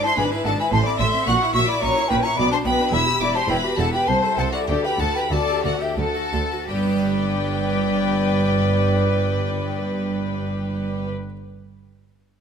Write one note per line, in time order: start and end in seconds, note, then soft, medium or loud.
0.00 0.16 G#2 medium
0.00 0.18 E4 medium
0.00 0.18 C5 loud
0.00 0.17 A5 medium
0.05 0.20 E4 medium
0.05 0.18 C6 loud
0.17 0.26 G#1 medium
0.17 0.25 G#2 medium
0.17 0.43 G#2 medium
0.17 0.30 D4 medium
0.17 0.33 D4 medium
0.17 0.45 B4 loud
0.17 0.23 G#5 loud
0.17 0.25 B5 loud
0.31 0.45 E4 medium
0.31 0.46 E4 medium
0.45 0.53 G#1 medium
0.45 0.53 G#2 medium
0.45 0.71 G#2 medium
0.45 0.58 D4 medium
0.45 0.60 D4 medium
0.45 0.50 A4 medium
0.45 0.51 F#5 medium
0.45 0.58 A5 loud
0.58 0.72 E4 medium
0.58 0.73 E4 medium
0.58 0.72 B4 medium
0.58 0.72 G#5 loud
0.58 0.65 B5 medium
0.71 0.80 A1 loud
0.71 0.80 A2 loud
0.71 0.98 A2 medium
0.71 0.85 A3 medium
0.71 0.86 C5 loud
0.71 0.79 A5 loud
0.71 0.85 C6 loud
0.86 1.00 C4 medium
0.86 1.01 E4 medium
0.86 1.00 D5 loud
0.86 0.98 B5 medium
0.86 0.92 D6 loud
0.99 1.08 A1 medium
0.99 1.08 A2 medium
0.99 1.25 A2 medium
0.99 1.13 A3 medium
0.99 1.15 C5 medium
0.99 1.28 E5 loud
0.99 1.26 C6 loud
0.99 1.07 E6 loud
1.12 1.27 C4 medium
1.12 1.28 E4 medium
1.26 1.36 A#1 medium
1.26 1.35 A#2 loud
1.26 1.53 A#2 medium
1.26 1.40 F#4 medium
1.26 1.55 F#5 loud
1.26 1.54 C#6 loud
1.26 1.35 F#6 loud
1.40 1.54 E4 medium
1.40 1.57 E4 medium
1.53 1.63 A#1 loud
1.53 1.63 A#2 medium
1.53 1.68 F#4 medium
1.53 1.68 E5 loud
1.53 1.60 C#6 loud
1.53 1.69 E6 loud
1.57 1.81 A#2 medium
1.57 1.70 C#5 medium
1.66 1.81 E4 medium
1.66 1.82 D5 loud
1.66 1.81 B5 medium
1.66 1.83 D6 loud
1.70 1.84 E4 medium
1.80 1.91 A#1 medium
1.80 1.90 A#2 medium
1.80 2.08 A#2 medium
1.80 1.97 C#4 medium
1.80 1.94 F#4 medium
1.80 2.10 C#5 loud
1.80 2.10 A#5 loud
1.80 2.10 C#6 loud
1.94 2.11 D4 medium
1.94 2.09 E4 medium
2.08 2.19 A#1 medium
2.08 2.18 A#2 loud
2.08 2.35 A#2 medium
2.08 2.25 C#4 medium
2.08 2.23 F#4 medium
2.08 2.23 B4 loud
2.08 2.25 G5 loud
2.08 2.15 B5 loud
2.22 2.37 E4 medium
2.22 2.38 E4 medium
2.22 2.37 C#5 medium
2.22 2.39 A#5 loud
2.22 2.38 C#6 loud
2.35 2.46 B1 medium
2.35 2.45 B2 loud
2.35 2.63 B2 medium
2.35 2.49 B3 medium
2.35 2.51 D5 loud
2.35 2.51 B5 loud
2.35 2.52 D6 loud
2.50 2.65 D4 medium
2.50 2.67 D4 medium
2.50 2.57 C5 loud
2.50 2.58 A5 medium
2.50 2.58 C6 loud
2.64 2.74 B1 loud
2.64 2.73 B2 medium
2.64 2.90 B2 medium
2.64 2.79 B3 medium
2.64 2.80 B4 medium
2.64 2.93 B4 loud
2.64 2.95 G5 loud
2.64 2.93 B5 loud
2.78 2.93 D4 medium
2.78 2.94 D4 medium
2.91 3.01 E1 medium
2.91 3.00 E2 loud
2.91 3.19 E2 medium
2.91 3.05 E4 medium
2.91 3.01 E5 loud
2.91 3.21 B5 loud
2.91 3.21 E6 loud
3.06 3.21 G4 medium
3.06 3.22 G4 medium
3.20 3.29 E1 medium
3.20 3.28 E2 medium
3.20 3.47 E2 medium
3.20 3.35 E4 medium
3.20 3.35 D5 loud
3.20 3.36 E5 medium
3.20 3.37 B5 loud
3.20 3.35 D6 loud
3.35 3.50 G4 medium
3.35 3.50 C5 medium
3.35 3.49 A5 loud
3.35 3.50 C6 loud
3.48 3.58 E1 medium
3.48 3.56 E2 loud
3.48 3.75 E2 medium
3.48 3.65 E4 medium
3.48 3.63 E4 medium
3.48 3.79 B4 loud
3.48 3.57 G5 loud
3.48 3.79 B5 loud
3.63 3.79 F#4 medium
3.63 3.79 G4 medium
3.77 3.87 E1 medium
3.77 3.85 E2 medium
3.77 4.05 E2 medium
3.77 3.94 E4 medium
3.77 3.93 A4 loud
3.77 3.93 F#5 medium
3.77 3.94 A5 loud
3.92 4.08 G4 medium
3.92 4.07 B4 medium
3.92 4.09 G5 loud
3.92 4.08 B5 loud
4.07 4.15 C2 medium
4.07 4.16 C2 medium
4.07 4.35 C2 medium
4.07 4.38 C5 loud
4.07 4.22 C5 medium
4.07 4.40 A5 loud
4.07 4.16 C6 loud
4.22 4.39 E4 medium
4.22 4.38 A4 medium
4.38 4.46 C2 medium
4.38 4.66 C2 medium
4.38 4.53 A4 loud
4.38 4.53 C5 medium
4.38 4.55 C5 medium
4.38 4.53 F#5 loud
4.38 4.44 A5 loud
4.52 4.69 E4 medium
4.52 4.68 F#4 medium
4.52 4.67 A4 medium
4.52 4.68 D5 medium
4.52 4.60 F#5 loud
4.68 4.76 D2 medium
4.68 4.97 D2 medium
4.68 4.84 G4 medium
4.68 4.83 A4 medium
4.68 4.86 D5 medium
4.68 4.75 G5 loud
4.83 4.99 G4 medium
4.83 5.01 G4 medium
4.83 4.99 B4 medium
4.83 5.01 G5 medium
4.83 5.00 B5 loud
4.98 5.06 D2 medium
4.98 5.28 D2 medium
4.98 5.07 D2 medium
4.98 5.14 A4 medium
4.98 5.15 A4 medium
4.98 5.16 C5 medium
4.98 5.17 F#5 loud
4.98 5.16 A5 loud
5.14 5.31 G4 medium
5.14 5.32 G4 medium
5.14 5.31 B4 medium
5.14 5.32 G5 medium
5.14 5.32 B5 loud
5.30 5.39 D2 medium
5.30 5.61 D2 medium
5.30 5.49 C4 medium
5.30 5.63 A4 medium
5.30 5.47 A4 medium
5.30 5.64 D5 loud
5.30 5.65 A5 loud
5.48 5.64 D4 medium
5.48 5.65 G4 medium
5.63 5.72 D2 medium
5.63 5.95 D2 medium
5.63 5.72 D2 medium
5.63 5.82 C4 medium
5.63 5.80 F#4 medium
5.63 5.81 A4 medium
5.63 5.83 D5 medium
5.63 5.81 F#5 loud
5.79 5.97 G4 medium
5.79 5.98 G4 medium
5.79 5.98 E5 medium
5.79 5.99 G5 medium
5.95 6.06 D2 medium
5.95 6.30 D2 medium
5.95 6.07 D2 medium
5.95 6.66 A4 loud
5.95 6.14 A4 medium
5.95 6.68 F#5 medium
5.95 6.69 A5 medium
6.15 6.33 F#4 medium
6.15 6.34 F#4 medium
6.33 6.65 D2 medium
6.33 6.41 D2 medium
6.33 6.51 A4 medium
6.33 6.52 C5 medium
6.51 6.69 F#4 medium
6.67 11.08 G1 medium
6.67 11.08 G2 medium
6.67 11.08 G3 medium
6.67 11.07 G4 medium
6.67 11.09 B4 medium
6.67 11.10 D5 medium
6.67 11.09 G5 loud
6.75 11.15 B3 medium
6.83 11.22 D4 medium
6.89 11.29 G4 medium
6.97 11.36 D5 medium